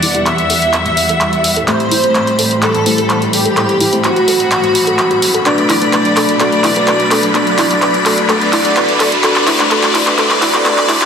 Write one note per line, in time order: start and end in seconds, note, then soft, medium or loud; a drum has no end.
0.00 1.64 E2 medium
0.00 5.42 E3 medium
0.00 5.42 G3 medium
0.00 0.12 B3 medium
0.00 0.12 E4 medium
0.00 0.08 E4 loud
0.00 0.12 G4 medium
0.00 0.17 D5 loud
0.00 0.17 D5 medium
0.00 1.66 E5 medium
0.00 1.64 F#5 medium
0.00 open hi-hat loud
0.00 riser medium
0.15 0.33 B3 medium
0.15 0.33 E4 medium
0.15 0.33 G4 medium
0.15 0.33 D5 loud
0.15 closed hi-hat medium
0.26 0.35 B4 medium
0.26 1.59 E5 loud
0.26 clap medium
0.26 closed hi-hat soft
0.38 closed hi-hat soft
0.50 0.58 A4 loud
0.50 open hi-hat loud
0.62 closed hi-hat medium
0.73 0.82 D5 medium
0.73 clap medium
0.73 closed hi-hat medium
0.86 0.94 A3 medium
0.86 closed hi-hat soft
0.97 open hi-hat loud
1.09 1.14 A4 loud
1.09 closed hi-hat medium
1.21 clap medium
1.21 closed hi-hat soft
1.33 1.38 G4 medium
1.33 closed hi-hat soft
1.44 open hi-hat loud
1.56 1.65 A4 loud
1.56 closed hi-hat soft
1.68 5.42 A2 medium
1.68 2.01 A3 medium
1.68 5.42 C4 medium
1.68 2.01 E4 medium
1.68 2.01 G4 medium
1.68 1.73 A4 loud
1.68 2.01 C5 loud
1.68 2.53 C5 loud
1.68 11.05 B5 medium
1.68 clap medium
1.68 closed hi-hat soft
1.80 closed hi-hat soft
1.91 1.97 E4 loud
1.91 open hi-hat loud
2.04 2.83 A3 medium
2.04 2.83 E4 medium
2.04 2.83 G4 medium
2.04 2.83 C5 loud
2.04 closed hi-hat soft
2.15 2.24 B4 medium
2.15 clap medium
2.15 closed hi-hat soft
2.27 closed hi-hat soft
2.39 2.47 A4 loud
2.39 open hi-hat loud
2.51 closed hi-hat soft
2.62 3.24 A4 loud
2.62 2.71 D5 medium
2.62 clap medium
2.62 closed hi-hat soft
2.75 2.83 A3 medium
2.75 closed hi-hat soft
2.86 3.54 A3 medium
2.86 3.54 E4 medium
2.86 3.54 G4 medium
2.86 3.54 C5 medium
2.86 open hi-hat loud
2.98 3.03 A4 loud
2.98 closed hi-hat medium
3.10 clap medium
3.10 closed hi-hat medium
3.22 3.27 G4 medium
3.22 closed hi-hat soft
3.33 3.95 G4 loud
3.33 open hi-hat loud
3.45 3.54 A4 loud
3.45 closed hi-hat medium
3.57 3.90 A3 medium
3.57 3.90 E4 medium
3.57 3.90 G4 medium
3.57 3.62 A4 loud
3.57 3.90 C5 medium
3.57 clap medium
3.57 closed hi-hat soft
3.69 closed hi-hat soft
3.80 3.86 E4 loud
3.80 open hi-hat loud
3.93 4.11 A3 medium
3.93 4.11 E4 medium
3.93 4.11 G4 medium
3.93 4.11 C5 loud
3.93 closed hi-hat soft
4.04 5.37 F#4 loud
4.04 4.13 B4 medium
4.04 clap medium
4.04 closed hi-hat soft
4.16 closed hi-hat soft
4.28 4.36 A4 loud
4.28 open hi-hat loud
4.40 closed hi-hat soft
4.51 4.60 D5 medium
4.51 clap medium
4.51 closed hi-hat soft
4.63 4.72 A3 medium
4.63 closed hi-hat soft
4.75 open hi-hat loud
4.87 4.92 A4 loud
4.87 closed hi-hat medium
4.99 clap medium
4.99 closed hi-hat soft
5.11 5.16 G4 medium
5.11 closed hi-hat soft
5.22 open hi-hat loud
5.34 5.42 A4 loud
5.34 closed hi-hat soft
5.46 9.20 B2 medium
5.46 9.20 F#3 medium
5.46 9.20 A3 medium
5.46 5.79 A3 medium
5.46 5.79 D4 medium
5.46 9.20 D4 medium
5.46 5.79 F#4 medium
5.46 5.51 A4 medium
5.46 5.79 B4 medium
5.46 6.31 D5 medium
5.46 clap medium
5.46 closed hi-hat soft
5.58 closed hi-hat soft
5.69 5.75 E4 medium
5.69 clap medium
5.69 open hi-hat loud
5.82 6.39 A3 medium
5.82 6.39 D4 medium
5.82 6.39 F#4 medium
5.82 6.39 B4 medium
5.82 closed hi-hat soft
5.93 6.02 B4 medium
5.93 clap medium
5.93 closed hi-hat soft
6.05 closed hi-hat soft
6.17 6.25 A4 medium
6.17 clap medium
6.17 open hi-hat loud
6.29 closed hi-hat soft
6.40 6.73 A3 medium
6.40 6.73 D4 medium
6.40 6.73 F#4 medium
6.40 6.45 A4 medium
6.40 6.73 B4 loud
6.40 7.26 D5 loud
6.40 clap medium
6.40 closed hi-hat medium
6.52 closed hi-hat soft
6.64 6.69 E4 medium
6.64 clap medium
6.64 open hi-hat loud
6.76 7.33 A3 medium
6.76 7.33 D4 medium
6.76 7.33 F#4 medium
6.76 7.33 B4 medium
6.76 closed hi-hat medium
6.88 6.96 B4 medium
6.88 clap medium
6.88 closed hi-hat soft
7.00 closed hi-hat soft
7.11 7.20 A4 medium
7.11 clap medium
7.11 open hi-hat loud
7.23 closed hi-hat soft
7.35 7.68 A3 medium
7.35 7.68 D4 medium
7.35 7.68 F#4 medium
7.35 7.40 A4 medium
7.35 7.68 B4 loud
7.35 8.20 D5 loud
7.35 clap medium
7.35 closed hi-hat medium
7.47 closed hi-hat soft
7.58 7.64 E4 loud
7.58 clap medium
7.58 open hi-hat loud
7.71 8.28 A3 medium
7.71 8.28 D4 medium
7.71 8.28 F#4 medium
7.71 8.28 B4 medium
7.71 closed hi-hat medium
7.82 7.91 B4 medium
7.82 clap medium
7.82 closed hi-hat soft
7.94 closed hi-hat soft
8.06 8.14 A4 medium
8.06 clap medium
8.06 open hi-hat loud
8.18 closed hi-hat medium
8.29 8.62 A3 medium
8.29 8.62 D4 medium
8.29 8.62 F#4 medium
8.29 8.34 A4 loud
8.29 8.62 B4 loud
8.29 9.15 D5 loud
8.29 clap medium
8.29 closed hi-hat medium
8.41 closed hi-hat soft
8.53 8.58 E4 loud
8.53 clap medium
8.53 open hi-hat loud
8.65 9.22 A3 medium
8.65 9.22 D4 medium
8.65 9.22 F#4 medium
8.65 9.22 B4 loud
8.65 closed hi-hat medium
8.77 8.85 B4 medium
8.77 clap medium
8.77 closed hi-hat medium
8.89 closed hi-hat soft
9.00 9.09 A4 loud
9.00 clap medium
9.00 open hi-hat loud
9.12 closed hi-hat medium
9.24 11.05 A2 medium
9.24 11.05 E3 medium
9.24 11.05 G3 medium
9.24 9.57 A3 medium
9.24 11.05 C4 medium
9.24 9.57 D4 medium
9.24 9.57 F#4 medium
9.24 9.29 A4 loud
9.24 9.57 B4 loud
9.24 9.69 D5 loud
9.24 clap medium
9.24 closed hi-hat medium
9.36 clap medium
9.36 closed hi-hat soft
9.47 9.53 E4 loud
9.47 clap loud
9.47 open hi-hat loud
9.60 9.69 A3 medium
9.60 9.69 D4 medium
9.60 9.69 F#4 medium
9.60 9.69 B4 loud
9.60 clap medium
9.60 closed hi-hat medium
9.71 10.04 A3 loud
9.71 10.04 D4 medium
9.71 10.04 F#4 medium
9.71 9.76 A4 medium
9.71 10.04 B4 loud
9.71 10.16 D5 loud
9.71 10.17 D5 loud
9.71 clap medium
9.71 closed hi-hat medium
9.83 clap medium
9.83 closed hi-hat soft
9.95 10.00 E4 loud
9.95 clap medium
9.95 open hi-hat loud
10.07 10.17 A3 medium
10.07 10.17 D4 medium
10.07 10.17 F#4 medium
10.07 10.17 B4 loud
10.07 clap medium
10.07 closed hi-hat medium
10.18 10.51 A3 medium
10.18 10.51 D4 medium
10.18 10.51 F#4 medium
10.18 10.23 A4 loud
10.18 10.51 B4 loud
10.18 10.64 D5 loud
10.18 clap medium
10.18 closed hi-hat medium
10.31 clap medium
10.31 closed hi-hat soft
10.42 10.47 E4 loud
10.42 clap loud
10.42 open hi-hat loud
10.54 10.64 A3 medium
10.54 10.64 D4 medium
10.54 10.64 F#4 medium
10.54 10.64 B4 loud
10.54 clap medium
10.54 closed hi-hat medium
10.65 10.99 A3 medium
10.65 10.99 D4 medium
10.65 10.99 F#4 medium
10.65 10.71 A4 loud
10.65 10.99 B4 loud
10.65 11.05 D5 loud
10.65 clap loud
10.65 closed hi-hat medium
10.78 clap medium
10.78 closed hi-hat soft
10.89 10.94 E4 loud
10.89 clap loud
10.89 open hi-hat loud
11.01 11.05 A3 medium
11.01 11.05 D4 medium
11.01 11.05 F#4 medium
11.01 11.05 B4 loud
11.01 clap medium
11.01 closed hi-hat medium